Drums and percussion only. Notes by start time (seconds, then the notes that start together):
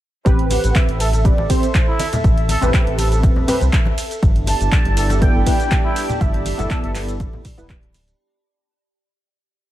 0.26 kick, closed hi-hat, shaker
0.39 closed hi-hat
0.50 open hi-hat, ride, muted conga, high conga, shaker
0.64 closed hi-hat, shaker
0.75 kick, clap, closed hi-hat, muted conga, shaker
0.89 closed hi-hat
1.00 open hi-hat, ride, shaker
1.13 closed hi-hat, muted conga, shaker
1.25 kick, closed hi-hat, shaker
1.38 muted conga
1.50 kick, open hi-hat, ride, high conga, shaker
1.63 closed hi-hat, shaker
1.75 kick, clap, closed hi-hat, muted conga, shaker
1.99 open hi-hat, ride, muted conga, shaker
2.13 closed hi-hat, low conga, shaker
2.24 kick, closed hi-hat, shaker
2.37 closed hi-hat, muted conga
2.49 open hi-hat, ride, high conga, shaker
2.62 closed hi-hat, muted conga, low conga, shaker
2.74 kick, clap, closed hi-hat, shaker
2.87 closed hi-hat
2.98 open hi-hat, ride, muted conga, shaker
3.12 closed hi-hat, shaker
3.23 kick, closed hi-hat, muted conga, shaker
3.36 low conga
3.48 open hi-hat, ride, low conga, shaker
3.61 closed hi-hat, muted conga, shaker
3.73 kick, clap, closed hi-hat, shaker
3.86 muted conga, high conga
3.98 open hi-hat, ride, shaker
4.11 closed hi-hat, shaker
4.23 kick, closed hi-hat, muted conga, shaker
4.36 closed hi-hat
4.47 open hi-hat, ride, muted conga, high conga, shaker
4.61 closed hi-hat, shaker
4.72 kick, clap, closed hi-hat, shaker
4.85 closed hi-hat, muted conga
4.97 open hi-hat, ride, shaker
5.10 closed hi-hat, muted conga, shaker
5.22 kick, closed hi-hat, shaker
5.46 kick, open hi-hat, ride, muted conga, high conga, shaker
5.60 closed hi-hat, shaker
5.71 kick, clap, closed hi-hat, muted conga, shaker
5.96 open hi-hat, ride, shaker
6.09 closed hi-hat, muted conga, low conga, shaker
6.21 kick, closed hi-hat, shaker
6.34 closed hi-hat, muted conga
6.45 open hi-hat, ride, high conga, shaker
6.59 closed hi-hat, low conga, shaker
6.70 kick, clap, closed hi-hat, muted conga, shaker
6.84 closed hi-hat
6.95 clap, open hi-hat, ride, muted conga, shaker
7.08 closed hi-hat, shaker
7.20 kick, closed hi-hat, shaker
7.33 muted conga, low conga
7.45 kick, open hi-hat, ride, low conga, shaker
7.58 closed hi-hat, muted conga, shaker
7.70 kick, clap, closed hi-hat, shaker
7.83 closed hi-hat, high conga
7.94 open hi-hat, ride, muted conga, shaker
8.08 closed hi-hat, shaker